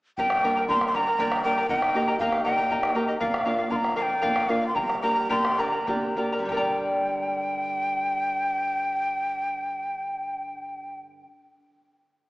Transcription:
0.18 nylon-string guitar G2, charango G4 A#4 D5 G5 A#5, quena G5, bombo low
0.30 bombo rim
0.43 nylon-string guitar G3 A#3 D4, charango A#4 D5 G5 A#5
0.56 charango A#4 D5 A#5, bombo rim
0.68 nylon-string guitar G3 A#3 D4, charango A#4 D5 G5 A#5, quena C6, bombo low
0.81 bombo rim
0.88 quena C6
0.94 nylon-string guitar D3, charango A#4 D5 G5 A#5, quena A#5
1.07 charango A#4 D5 A#5
1.18 nylon-string guitar G3 A#3 D4, charango G4 A#4 D5 G5 A#5, bombo rim, bombo low
1.32 bombo rim
1.44 nylon-string guitar G3 A#3 D4, charango A#4 D5 G5 A#5, quena G5
1.57 charango A#4 D5 A#5, bombo rim
1.69 nylon-string guitar D#3, charango A#4 D#5 G5 A#5, quena G5, bombo low
1.82 bombo rim
1.94 nylon-string guitar A#3 D#4 G4, charango A#4 D#5 G5 A#5
2.08 charango A#4 D#5 A#5, bombo rim
2.19 nylon-string guitar A#3 D#4 G4, charango G4 A#4 D#5 G5 A#5, quena F5, bombo low
2.32 bombo rim
2.45 nylon-string guitar A#2, charango A#4 D#5 G5 A#5, quena G5
2.58 charango A#4 D#5 A#5
2.70 nylon-string guitar A#3 D#4 G4, charango A#4 D#5 G5 A#5, bombo rim, bombo low
2.83 bombo rim
2.95 nylon-string guitar A#3 D#4 G4, charango A#4 D#5 G5 A#5
3.08 charango A#4 D#5 A#5, bombo rim
3.20 nylon-string guitar A#2, charango A#4 D5 F5, quena F5, bombo low
3.34 bombo rim
3.45 nylon-string guitar A#3 D4 F4, charango A#4 D5 F5
3.58 charango D5 F5, bombo rim
3.70 nylon-string guitar A#3 D4 F4, charango A#4 D5 F5, quena C6, bombo low
3.76 quena A#5
3.84 bombo rim
3.96 nylon-string guitar F2, charango A#4 D5 F5, quena A#5
4.02 quena G5
4.09 charango D5 F5
4.22 nylon-string guitar A#3 D4 F4, charango A#4 D5 F5, bombo rim, bombo low
4.36 bombo rim
4.49 nylon-string guitar A#3 D4 F4, charango A#4 D5 F5, quena F5
4.61 charango D5 F5, bombo rim
4.68 quena C6
4.75 nylon-string guitar G2, charango A#4 D5 G5 A#5, quena A#5, bombo low
4.90 bombo rim
5.02 nylon-string guitar A#3 D4 G4, charango A#4 D5 G5 A#5, quena A#5
5.16 charango A#4 D5 A#5
5.29 nylon-string guitar A#3 D4 G4, charango G4 A#4 D5 G5 A#5, quena C6, bombo low
5.45 bombo rim
5.58 nylon-string guitar D3, charango A#4 D5 G5 A#5, quena A#5
5.72 charango A#4 D5 A#5
5.87 nylon-string guitar A#3 D4 G4, charango A#4 D5 G5 A#5, bombo low
6.17 nylon-string guitar A#3 D4 G4, charango A#4 D5 G5 A#5, bombo rim
6.32 charango A#4 D5 A#5
6.39 nylon-string guitar G2 D3
6.45 nylon-string guitar G3, charango G4 G5, quena A#5, bombo low
6.50 nylon-string guitar D4 A#4, charango A#4, quena G5
6.54 charango D5 A#5, nylon-string guitar D5

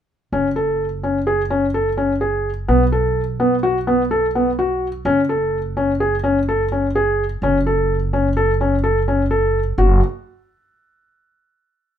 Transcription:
0.32 upright bass F#1, felt piano C#4
0.56 felt piano A4
1.03 felt piano C#4
1.27 felt piano G#4
1.50 felt piano C#4
1.74 felt piano A4
1.97 felt piano C#4
2.21 felt piano G#4
2.68 upright bass B1, felt piano B3
2.92 felt piano A4
3.40 felt piano B3
3.63 felt piano F#4
3.87 felt piano B3
4.11 felt piano A4
4.35 felt piano B3
4.59 felt piano F#4
5.05 upright bass F#1, felt piano C#4
5.29 felt piano A4
5.77 felt piano C#4
6.00 felt piano G#4
6.24 felt piano C#4
6.49 felt piano A4
6.72 felt piano C#4
6.95 felt piano G#4
7.42 upright bass F#1, felt piano C#4
7.67 felt piano A4
8.13 felt piano C#4
8.37 felt piano A4
8.61 felt piano C#4
8.84 felt piano A4
9.08 felt piano C#4
9.31 felt piano A4
9.78 upright bass F#1, felt piano F#4

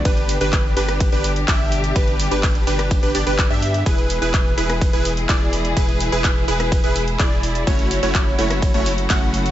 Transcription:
Already playing: string section D3
0.05 sub bass G1, string section B2 G3 D4 G4, supersaw synth D4 G4 B4, digital synth lead B4, kick, closed hi-hat, ride
0.17 closed hi-hat
0.29 open hi-hat
0.41 sub bass G1, supersaw synth D4 G4 B4, digital synth lead B4, closed hi-hat
0.53 kick, clap, closed hi-hat, ride
0.77 sub bass G1, supersaw synth D4 G4 B4, digital synth lead B4, open hi-hat
0.89 cross-stick, closed hi-hat
1.00 kick, closed hi-hat, ride
1.12 sub bass G1, supersaw synth D4 G4 B4, digital synth lead B4, closed hi-hat
1.24 open hi-hat
1.36 closed hi-hat
1.48 sub bass G1, supersaw synth D4 G4 E5, digital synth lead E5, kick, clap, closed hi-hat, ride
1.72 open hi-hat
1.84 closed hi-hat
1.96 sub bass G1, supersaw synth D4 G4 B4, digital synth lead B4, kick, closed hi-hat, ride
2.08 closed hi-hat
2.20 open hi-hat
2.31 sub bass G1, supersaw synth D4 G4 B4, digital synth lead B4, closed hi-hat
2.43 kick, clap, closed hi-hat, ride
2.55 closed hi-hat
2.67 sub bass G1, supersaw synth D4 G4 B4, digital synth lead B4, open hi-hat
2.79 cross-stick, closed hi-hat
2.91 kick, closed hi-hat, ride
3.03 sub bass G1, supersaw synth D4 G4 B4, digital synth lead B4, closed hi-hat
3.15 sub bass G1, supersaw synth D4 G4 D5, digital synth lead D5, open hi-hat
3.27 sub bass G1, supersaw synth D4 G4 B4, digital synth lead B4, closed hi-hat
3.39 kick, clap, closed hi-hat, ride
3.51 sub bass G2, supersaw synth D4 G4 E5, digital synth lead E5
3.62 open hi-hat
3.74 closed hi-hat
3.86 sub bass E1, string section E3 G#3 E4 G#4, supersaw synth E4 G#4 B4, digital synth lead B4, kick, closed hi-hat, ride
3.98 closed hi-hat
4.10 open hi-hat
4.22 sub bass E1, supersaw synth E4 G#4 B4, digital synth lead B4, closed hi-hat
4.34 kick, clap, closed hi-hat, ride
4.58 sub bass E1, supersaw synth E4 G#4 B4, digital synth lead B4, open hi-hat
4.70 cross-stick, closed hi-hat
4.81 kick, closed hi-hat, ride
4.93 sub bass E1, supersaw synth E4 G#4 B4, digital synth lead B4, closed hi-hat
5.05 open hi-hat
5.17 closed hi-hat
5.29 sub bass E1, supersaw synth E4 G#4 D5, digital synth lead D5, kick, clap, closed hi-hat, ride
5.53 open hi-hat
5.65 closed hi-hat
5.77 sub bass E1, supersaw synth E4 G#4 B4, digital synth lead B4, kick, closed hi-hat, ride
5.89 closed hi-hat
6.00 open hi-hat
6.12 sub bass E1, supersaw synth E4 G#4 B4, digital synth lead B4, closed hi-hat
6.24 kick, clap, closed hi-hat, ride
6.48 sub bass E1, supersaw synth E4 G#4 B4, digital synth lead B4, open hi-hat
6.60 cross-stick, closed hi-hat
6.72 kick, closed hi-hat, ride
6.84 sub bass E1, supersaw synth E4 G#4 B4, digital synth lead B4, closed hi-hat
6.96 open hi-hat
7.08 closed hi-hat
7.19 sub bass E1, supersaw synth E4 G#4 D5, digital synth lead D5, kick, clap, closed hi-hat, ride
7.43 open hi-hat
7.55 closed hi-hat
7.67 sub bass F#1, string section C#3 F#3 A3 F#4, supersaw synth A3 C#4 E4 F#4 C#5, digital synth lead C#5, kick, closed hi-hat, ride
7.79 closed hi-hat
7.91 open hi-hat
8.03 sub bass F#1, supersaw synth A3 C#4 E4 F#4 C#5, digital synth lead C#5, closed hi-hat
8.15 kick, clap, closed hi-hat, ride
8.39 sub bass F#1, supersaw synth A3 C#4 E4 F#4 C#5, digital synth lead C#5, open hi-hat
8.51 cross-stick, closed hi-hat
8.62 kick, closed hi-hat, ride
8.74 sub bass F#1, supersaw synth A3 C#4 E4 F#4 C#5, digital synth lead C#5, closed hi-hat
8.86 open hi-hat
8.98 closed hi-hat
9.10 sub bass F#1, supersaw synth A3 C#4 E4 F#4 F#5, digital synth lead F#5, kick, clap, closed hi-hat, ride
9.34 open hi-hat
9.46 closed hi-hat

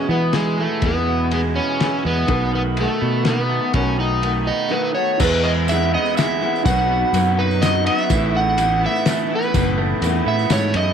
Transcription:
Already playing: clean electric guitar E2 B2 G#3, electric slide guitar C#4, upright piano E4 G#4 B4
0.09 fingered electric bass E3, steel-string acoustic guitar E3 G#3 B3 E4, electric slide guitar B3
0.33 steel-string acoustic guitar E3 G#3 B3 E4, electric slide guitar G#3, snare, ride
0.58 clean electric guitar G#3, electric slide guitar A3
0.81 steel-string acoustic guitar E2 B2 E3 G#3 B3 E4, fingered electric bass E2, kick, ride
0.85 electric slide guitar B3
1.07 clean electric guitar B2
1.31 steel-string acoustic guitar E3 G#3 B3 E4, electric slide guitar B3, ride
1.56 clean electric guitar B3, electric slide guitar C#4
1.79 steel-string acoustic guitar E3 G#3 B3, snare, ride
1.83 steel-string acoustic guitar E4
2.05 fingered electric bass E2, clean electric guitar G#3, electric slide guitar B3
2.26 fingered electric bass B1, steel-string acoustic guitar B2 D#3 A3 B3 F#4, upright piano D#4 A4, kick, ride
2.31 upright piano B4
2.53 clean electric guitar D#3, electric slide guitar B3
2.77 steel-string acoustic guitar D#3 A3 B3 F#4, electric slide guitar A3, ride
3.01 fingered electric bass B2, clean electric guitar B3
3.24 steel-string acoustic guitar D#3 A3 B3 F#4, electric slide guitar B3, snare, ride
3.49 clean electric guitar A3
3.73 fingered electric bass B1, steel-string acoustic guitar B2 D#3 A3 B3 F#4, electric slide guitar C#4, kick, ride
3.98 clean electric guitar D#3, electric slide guitar D#4
4.22 steel-string acoustic guitar D#3 A3 B3 F#4, ride
4.47 clean electric guitar B3, electric slide guitar D#5
4.69 steel-string acoustic guitar D#3 A3 B3 F#4, upright piano D#4 A4 B4, electric slide guitar B4
4.94 steel-string acoustic guitar A3 B3 F#4, electric slide guitar C#5
5.17 steel-string acoustic guitar E2 B2 E3 G#3 B3, fingered electric bass E2, upright piano E4 G#4, electric slide guitar B4, kick, crash, tambourine
5.22 steel-string acoustic guitar E4, upright piano B4
5.43 clean electric guitar G#3, electric slide guitar D#5
5.68 steel-string acoustic guitar E3 G#3 B3, electric slide guitar E5, ride, tambourine
5.72 steel-string acoustic guitar E4
5.94 clean electric guitar B3, electric slide guitar D#5
6.06 tambourine
6.17 steel-string acoustic guitar E3 G#3 B3 E4, electric slide guitar E5, snare, ride, tambourine
6.41 steel-string acoustic guitar E3 G#3 B3 E4
6.56 tambourine
6.63 fingered electric bass B1, upright piano D#4 F#4 B4, electric slide guitar F#5, kick, ride, tambourine
6.68 steel-string acoustic guitar B2 F#3 B3 D#4 F#4
6.91 clean electric guitar B3
7.13 fingered electric bass F#2, steel-string acoustic guitar F#3 B3 D#4, ride, tambourine
7.17 steel-string acoustic guitar F#4
7.39 clean electric guitar D#4, electric slide guitar B4
7.51 tambourine
7.61 steel-string acoustic guitar F#3 B3 D#4 F#4, electric slide guitar D#5, snare, ride, tambourine
7.86 clean electric guitar F#3, steel-string acoustic guitar B3 D#4 F#4, electric slide guitar D#5, ride
7.98 electric slide guitar E5, tambourine
8.09 fingered electric bass A1, steel-string acoustic guitar A2 E3 A3 B3 E4, upright piano E4 A4 B4, kick, ride, tambourine
8.34 clean electric guitar A3, electric slide guitar F#5
8.57 steel-string acoustic guitar E3 A3 B3 E4, ride, tambourine
8.83 steel-string acoustic guitar A3 B3 E4, electric slide guitar E5
8.96 tambourine
9.06 steel-string acoustic guitar E3 A3 B3, snare, ride, tambourine
9.10 steel-string acoustic guitar E4
9.30 clean electric guitar E3, steel-string acoustic guitar A3 B3 E4
9.35 electric slide guitar B4
9.42 tambourine
9.54 fingered electric bass F#1, steel-string acoustic guitar A2 E3 A3 B3 E4, kick, ride, tambourine
9.78 clean electric guitar A3
10.01 fingered electric bass E2, steel-string acoustic guitar E3, ride, tambourine
10.05 steel-string acoustic guitar A3 B3 E4
10.26 fingered electric bass A2, clean electric guitar B3, electric slide guitar E5
10.39 tambourine
10.50 fingered electric bass G#2, steel-string acoustic guitar E3 A3, electric slide guitar C#5, snare, ride, tambourine
10.55 steel-string acoustic guitar B3 E4
10.62 tambourine
10.74 fingered electric bass F#2, clean electric guitar E3, electric slide guitar D#5, ride, tambourine

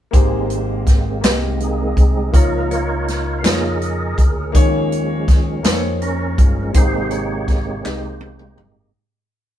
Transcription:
0.11 fingered electric bass G#1, grand piano G#2 A#3 G4 G#4 C5, kick, closed hi-hat
0.15 tonewheel organ G#3 A#3 C4
0.50 closed hi-hat
0.87 kick, snare, closed hi-hat
1.21 fingered electric bass C2, grand piano A#3 G4 G#4 D#5, snare, clap, closed hi-hat
1.60 tonewheel organ D#3 A#3 C4 D#4 G#4, closed hi-hat
1.97 fingered electric bass C2, kick, closed hi-hat
2.32 fingered electric bass C#2, grand piano C#3 A#3 D#4 F4 C#5, tonewheel organ F3 A#3 D#4 F4 A#4, kick, closed hi-hat
2.71 tonewheel organ F4 A#4 C#5, closed hi-hat
3.08 snare, closed hi-hat
3.38 grand piano A#3, tonewheel organ F5
3.43 fingered electric bass F2, grand piano D#4 F4 C#5, tonewheel organ G#4 A#4 D#5, snare, clap, closed hi-hat
3.82 closed hi-hat
4.18 fingered electric bass D2, kick, closed hi-hat
4.52 fingered electric bass D#2, grand piano D#3 A#3 D#4 G#4 C#5, tonewheel organ F3 G#3 C#4, kick, closed hi-hat
4.92 closed hi-hat
5.28 kick, snare, closed hi-hat
5.63 fingered electric bass F2, grand piano A#3 D#4 G#4 C5, snare, clap, closed hi-hat
5.73 grand piano C#5
6.02 tonewheel organ C#4 A#4, closed hi-hat
6.38 fingered electric bass G1, tonewheel organ F3 G#3 C#4, kick, closed hi-hat
6.73 fingered electric bass G#1, grand piano G#2 G#3 D#4 G4 C5, tonewheel organ C5, kick, closed hi-hat
6.77 tonewheel organ C3 G#3 A#3 D#4 G4
7.10 tonewheel organ G4 C#5, closed hi-hat
7.48 kick, snare, closed hi-hat
7.83 fingered electric bass C2, grand piano G#3 D#4 G4 D#5, tonewheel organ D#4 G4 C5, snare, clap
8.21 high tom
8.39 mid tom
8.58 mid tom

